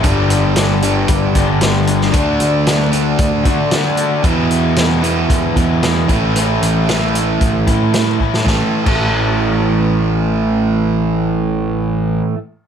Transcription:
<<
  \new Staff \with { instrumentName = "Overdriven electric guitar" } { \time 4/4 \key a \major \tempo 4 = 114 <g, d g b d' g'>4 <g b d' g'>4. <g b d' g'>8 <g, d g b d' g'>8 <g b d' g'>8 | <d a d' fis'>4 <d a d' fis'>4. <a d' fis'>8 <d a d' fis'>8 <a d' fis'>8 | <e, b, e gis b e'>4 <e gis b e'>4. <e gis b e'>8 <e, b, e gis b e'>8 <a, e a cis' e'>8 | <a, e a cis' e'>4 <e a cis' e'>4. <a cis' e'>8 <a, e a cis' e'>8 <a cis' e'>8 |
<a, e a cis' a'>16 r8 <a, e a cis' a'>2.~ <a, e a cis' a'>16~ | <a, e a cis' a'>1 | }
  \new Staff \with { instrumentName = "Overdriven electric guitar" } { \clef bass \time 4/4 \key a \major <g, d g>4. <g, d g>2~ <g, d g>8 | <d a d'>4. <d a d'>2~ <d a d'>8 | <e, b, e>4. <e, b, e>2 <a, e a>8~ | <a, e a>4 <a, e a>2~ <a, e a>8 r8 |
<a, e a>16 r8 <a, e a>2.~ <a, e a>16~ | <a, e a>1 | }
  \new Staff \with { instrumentName = "Picked electric bass" } { \clef bass \time 4/4 \key a \major g,,2 g,,8 g,,4. | d,8 d,4. d,8 d4. | e,2 e,8 e,4 a,,8~ | a,,8 a,,4. a,,8 a,4. |
a,,16 r8 a,,2.~ a,,16~ | a,,1 | }
  \new DrumStaff \with { instrumentName = "Drums" } \drummode { \time 4/4 <hh bd>8 hh8 <hh sn>8 hh8 <hh bd>8 <hh bd>8 <hh sn>8 hh16 sn16 | <hh bd>8 hh8 <hh sn>8 hh8 <hh bd>8 <hh bd>8 <hh sn>8 hh8 | <hh bd>8 hh8 <hh sn>8 hh8 <hh bd>8 <hh bd>8 <hh sn>8 <hh bd>8 | hh8 hh8 <hh sn>8 hh8 <hh bd>8 <hh bd>8 <hh sn>8 bd16 sn16 |
<bd sn>8. <cymc bd>16 r4 r4 r4 | r4 r4 r4 r4 | }
>>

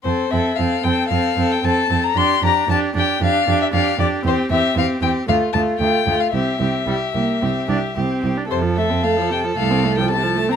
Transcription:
<<
  \new Staff \with { instrumentName = "Violin" } { \time 4/4 \key f \major \tempo 4 = 114 c''8 e''8 f''8 g''8 f''8. g''16 a''8. bes''16 | c'''8 bes''8 a''8 g''8 f''8. e''16 f''8 d''8 | c''8 e''8 f''8 g''8 f''8 a''8 g''8. f''16 | e''2. r4 |
c''8 e''8 f''8 g''8 f''8. g''16 a''8. bes''16 | }
  \new Staff \with { instrumentName = "Violin" } { \time 4/4 \key f \major a'8 a'8 a'8 a'8 a'8 a'8 a'8 a'8 | g'8 g'8 g'8 g'8 g'8 g'8 g'8 g'8 | g'8 g'8 g'8 g'8 f'8 f'8 f'8 f'8 | g'8 g'8 g'8 g'8 g'8 g'8 g'8 g'8 |
a'1 | }
  \new Staff \with { instrumentName = "Viola" } { \time 4/4 \key f \major c'8 c'8 c'8 c'8 c'8 c'8 c'8 c'8 | d'8 d'8 d'8 d'8 d'8 d'8 d'8 d'8 | c'8 c'8 c'8 c'8 a8 a8 a8 a8 | c'8 c'8 g8 bes8 c'8 d'8 c'8. d'16 |
c16 f16 a16 c'16 a16 f16 c16 f16 a16 c'16 a16 f16 c16 f16 a16 c'16 | }
  \new Staff \with { instrumentName = "Cello" } { \clef bass \time 4/4 \key f \major f,8 f,8 f,8 f,8 f,8 f,8 f,8 f,8 | f,8 f,8 f,8 f,8 f,8 f,8 f,8 f,8 | e,8 e,8 e,8 e,8 d,8 d,8 d,8 d,8 | c,8 c,8 c,8 c,8 c,8 c,8 c,8 c,8 |
f,4 r4 c,4 r4 | }
>>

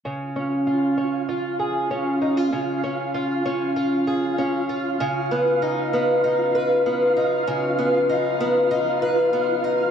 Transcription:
<<
  \new Staff \with { instrumentName = "Synth texture" } { \time 4/4 \key des \mixolydian \tempo 4 = 97 <f' f''>1~ | <f' f''>1~ | <f' f''>1~ | <f' f''>1 | }
  \new Staff \with { instrumentName = "Twelve-string acoustic guitar" } { \time 4/4 \key des \mixolydian des8 des'8 f'8 des'8 f'8 aes'8 des'8 ees'16 f'16 | des8 des'8 f'8 des'8 f'8 aes'8 des'8 f'8 | des8 ces'8 ees'8 ces'8 ees'8 ces''8 ces'8 ees'8 | des8 ces'8 ees'8 ces'8 ees'8 ces''8 ces'8 ees'8 | }
>>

